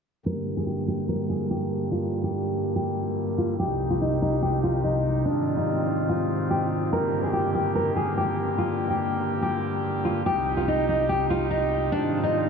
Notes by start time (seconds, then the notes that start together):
0.25 G2 D3 A#3 G4 A#4
0.57 G#4
0.67 G4
0.88 G4
1.09 A#4
1.30 G#4
1.51 G4
1.92 F4
2.24 G4
2.76 G4
3.38 F4
3.59 C2 C3 D#4 G4
3.90 F4
4.01 D#4
4.22 D#4
4.42 G4
4.64 F4
4.84 D#4
5.25 G#2 D#3 C4 D4 F4
5.57 D#4
6.09 F4
6.51 G4
6.92 G2 D3 A#3 G4 A#4
7.24 G#4
7.33 G4
7.55 G4
7.75 A#4
7.96 G#4
8.17 G4
8.58 F4
8.90 G4
9.42 G4
10.05 F4
10.26 C2 C3 D#4 G4
10.57 F4
10.68 D#4
10.89 D#4
11.09 G4
11.30 F4
11.51 D#4
11.92 G#2 D#3 C4 D4 F4
12.24 D#4